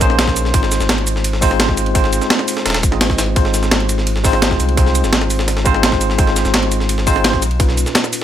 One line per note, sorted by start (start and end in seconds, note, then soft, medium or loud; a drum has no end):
0.00 0.52 A#1 medium
0.00 0.56 A#3 loud
0.00 0.56 C#4 medium
0.00 0.54 D#4 medium
0.00 0.02 G#4 medium
0.00 0.52 G#4 medium
0.00 0.02 C5 loud
0.00 0.52 C5 loud
0.00 kick loud
0.00 closed hi-hat medium
0.00 ride medium
0.00 shaker medium
0.10 snare soft
0.19 snare loud
0.19 closed hi-hat medium
0.19 ride medium
0.27 kick medium
0.27 snare medium
0.27 snare soft
0.36 closed hi-hat medium
0.36 ride medium
0.36 shaker medium
0.45 snare soft
0.53 0.79 G#1 medium
0.53 1.40 G#3 medium
0.53 1.40 C4 medium
0.53 1.40 D#4 medium
0.53 1.40 F4 medium
0.53 1.41 C5 medium
0.53 kick loud
0.53 closed hi-hat loud
0.53 ride medium
0.63 snare soft
0.72 snare soft
0.72 closed hi-hat medium
0.72 ride medium
0.72 shaker medium
0.80 2.20 G#1 medium
0.80 snare medium
0.80 shaker soft
0.89 snare loud
0.89 closed hi-hat loud
0.89 ride medium
0.98 ride soft
1.07 closed hi-hat medium
1.07 ride medium
1.07 shaker medium
1.16 snare soft
1.24 closed hi-hat loud
1.24 ride medium
1.33 snare soft
1.41 1.92 G#3 loud
1.41 1.93 C4 medium
1.41 1.93 D#4 medium
1.41 1.93 F4 medium
1.41 1.93 C5 loud
1.41 kick loud
1.41 closed hi-hat medium
1.41 open hi-hat medium
1.41 shaker medium
1.51 snare soft
1.60 snare loud
1.60 closed hi-hat medium
1.60 ride medium
1.69 kick medium
1.69 snare soft
1.77 closed hi-hat medium
1.77 ride medium
1.77 shaker medium
1.86 ride soft
1.94 2.81 G#3 medium
1.94 2.81 C4 medium
1.94 2.81 D#4 medium
1.94 2.81 F4 medium
1.94 2.82 C5 medium
1.94 kick loud
1.94 closed hi-hat loud
1.94 ride medium
2.04 snare soft
2.13 closed hi-hat medium
2.13 ride medium
2.13 shaker medium
2.22 snare soft
2.22 shaker soft
2.30 snare loud
2.30 closed hi-hat loud
2.30 ride medium
2.39 snare medium
2.48 open hi-hat medium
2.48 ride medium
2.48 shaker medium
2.57 snare medium
2.66 2.85 D#1 loud
2.66 snare medium
2.66 snare soft
2.66 closed hi-hat loud
2.66 ride medium
2.70 snare medium
2.70 ride medium
2.74 snare loud
2.74 ride medium
2.83 3.35 G#1 medium
2.83 kick loud
2.83 closed hi-hat medium
2.83 ride medium
2.83 shaker medium
2.91 3.34 G#3 medium
2.91 3.34 C4 medium
2.91 3.34 D#4 medium
2.91 3.34 F4 medium
2.91 3.35 D#5 medium
2.91 snare soft
3.01 snare loud
3.01 closed hi-hat loud
3.01 ride medium
3.10 kick medium
3.10 snare medium
3.10 snare soft
3.18 snare loud
3.18 closed hi-hat medium
3.18 ride medium
3.18 shaker medium
3.35 4.58 G#1 loud
3.35 4.22 G#3 medium
3.35 4.22 C4 medium
3.35 4.22 D#4 medium
3.35 4.23 F4 medium
3.35 4.23 C5 medium
3.35 kick loud
3.35 closed hi-hat loud
3.35 ride medium
3.45 snare soft
3.54 snare soft
3.54 closed hi-hat medium
3.54 ride medium
3.54 shaker medium
3.63 snare medium
3.63 shaker soft
3.71 snare loud
3.71 closed hi-hat loud
3.71 ride medium
3.80 ride soft
3.89 closed hi-hat medium
3.89 ride medium
3.89 shaker medium
3.98 snare soft
4.07 closed hi-hat loud
4.07 ride medium
4.16 snare soft
4.24 4.75 G#3 loud
4.24 4.75 C4 medium
4.24 4.75 D#4 medium
4.24 4.76 F4 medium
4.24 4.76 C5 loud
4.24 kick loud
4.24 closed hi-hat medium
4.24 open hi-hat medium
4.24 shaker medium
4.33 snare soft
4.42 snare loud
4.42 closed hi-hat medium
4.42 ride medium
4.51 kick medium
4.51 snare soft
4.60 5.02 C2 loud
4.60 closed hi-hat medium
4.60 ride medium
4.60 shaker medium
4.69 ride soft
4.76 5.63 G#3 medium
4.76 5.63 C4 medium
4.76 5.64 D#4 medium
4.76 5.64 F4 medium
4.76 5.64 C5 medium
4.76 kick loud
4.76 closed hi-hat medium
4.76 ride medium
4.86 snare soft
4.95 closed hi-hat medium
4.95 ride medium
4.95 shaker medium
5.04 6.44 G#1 medium
5.04 snare soft
5.04 shaker soft
5.13 snare loud
5.13 closed hi-hat loud
5.13 ride medium
5.21 snare medium
5.30 open hi-hat medium
5.30 ride medium
5.30 shaker medium
5.39 snare medium
5.48 snare soft
5.48 closed hi-hat medium
5.48 ride medium
5.57 snare medium
5.65 6.16 G#3 loud
5.65 6.16 C4 medium
5.65 6.17 D#4 medium
5.65 6.17 F4 medium
5.65 6.17 C5 loud
5.65 kick loud
5.65 closed hi-hat medium
5.65 ride medium
5.65 shaker medium
5.74 snare soft
5.83 snare loud
5.83 closed hi-hat medium
5.83 ride medium
5.92 kick medium
5.92 snare medium
5.92 snare soft
6.01 closed hi-hat medium
6.01 ride medium
6.01 shaker medium
6.10 snare soft
6.18 7.04 G#3 medium
6.18 7.05 C4 medium
6.18 7.05 D#4 medium
6.18 7.05 F4 medium
6.18 7.05 C5 medium
6.18 kick loud
6.18 closed hi-hat medium
6.18 ride medium
6.27 snare soft
6.36 snare soft
6.36 closed hi-hat medium
6.36 ride medium
6.36 shaker medium
6.45 7.44 G#1 medium
6.45 snare medium
6.45 shaker soft
6.54 snare loud
6.54 closed hi-hat medium
6.54 ride medium
6.63 ride soft
6.71 closed hi-hat medium
6.71 ride medium
6.71 shaker medium
6.80 snare soft
6.89 closed hi-hat medium
6.89 ride medium
6.98 snare soft
7.06 7.41 G#3 loud
7.06 7.41 C4 medium
7.06 7.41 D#4 medium
7.06 7.41 F4 medium
7.06 7.41 C5 loud
7.06 kick loud
7.06 closed hi-hat medium
7.06 open hi-hat medium
7.06 shaker medium
7.16 snare soft
7.24 snare loud
7.24 closed hi-hat medium
7.24 ride medium
7.33 kick medium
7.33 snare soft
7.42 7.85 B1 medium
7.42 closed hi-hat medium
7.42 ride medium
7.42 shaker medium
7.51 ride soft
7.59 8.24 A#2 medium
7.59 8.24 C#4 medium
7.59 8.24 D#4 medium
7.59 8.24 F4 medium
7.59 8.24 B4 medium
7.59 kick loud
7.59 closed hi-hat medium
7.59 ride medium
7.69 snare soft
7.77 closed hi-hat medium
7.77 ride medium
7.77 shaker medium
7.86 snare soft
7.86 shaker soft
7.95 snare loud
7.95 closed hi-hat medium
7.95 ride medium
8.04 snare medium
8.04 shaker soft
8.13 open hi-hat medium
8.13 ride medium
8.13 shaker medium